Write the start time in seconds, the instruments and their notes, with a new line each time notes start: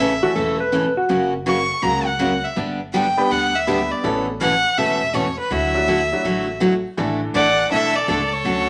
Already playing: upright bass A1, violin E5
0.00 steel-string acoustic guitar C#3 E3 A3 C#4 A4
0.23 upright piano E3 A3 C#4 E4 A4, electric slide guitar F#4
0.35 upright bass E1, steel-string acoustic guitar C#3 E3 A3 C#4 A4, electric slide guitar A4
0.60 electric slide guitar B4
0.72 steel-string acoustic guitar C#3 E3 A3 C#4 A4
0.97 electric slide guitar F#4
1.09 upright bass F#1, steel-string acoustic guitar C#3 F#3 A#3 C#4 F#4
1.46 steel-string acoustic guitar C#3 F#3 A#3 C#4 F#4, violin C#6
1.82 upright bass C#2, steel-string acoustic guitar C#3 F#3 A#3 C#4 F#4, violin A#5
2.06 violin F#5
2.19 steel-string acoustic guitar C#3 F#3 A#3 C#4 F#4
2.44 violin E5
2.56 upright bass G1, steel-string acoustic guitar D3 G3 B3 D4 G4
2.93 steel-string acoustic guitar D3 G3 B3 D4 G4, violin G5
3.17 upright piano G3 B3 D4 G4 B4
3.31 upright bass D2, steel-string acoustic guitar D3 G3 B3 D4 G4, violin F#5
3.55 violin E5
3.67 steel-string acoustic guitar D3 G3 B3 D4 G4, upright piano G3 B3 D4 G4 B4
3.91 violin D5
4.03 upright bass A1, steel-string acoustic guitar B2 E3 A3 C#4 A4, upright piano A3 B3 C#4 E4 A4
4.40 steel-string acoustic guitar B2 E3 A3 C#4 A4, violin F#5
4.77 upright bass E1, steel-string acoustic guitar B2 E3 A3 C#4 A4, violin E5
5.13 steel-string acoustic guitar B2 E3 A3 C#4 A4, violin C#5
5.39 violin B4
5.50 upright bass D2, steel-string acoustic guitar D3 F#3 A3 E4 F#4, violin E5
5.74 upright piano F#3 A3 D4 E4 F#4
5.88 steel-string acoustic guitar D3 F#3 A3 E4 F#4
6.12 upright piano F#3 A3 D4 E4 F#4
6.24 upright bass A1, steel-string acoustic guitar D3 F#3 A3 E4 F#4
6.60 steel-string acoustic guitar D3 F#3 A3 E4 F#4
6.97 upright bass A1, steel-string acoustic guitar D3 A3 D4 E4 A4, upright piano E3 A3 D4 E4 A4
7.34 upright bass A1, steel-string acoustic guitar D3 A3 D4 E4 A4, fiddle D5, violin F#5
7.71 upright bass B1, steel-string acoustic guitar D3 A3 D4 E4 A4, fiddle A4, violin E5
7.95 fiddle A4, violin D5
8.08 upright bass C#2, steel-string acoustic guitar D3 A3 D4 E4 A4
8.33 fiddle A4, violin C#5
8.45 upright bass D2, steel-string acoustic guitar D3 F#3 A3 C#4 F#4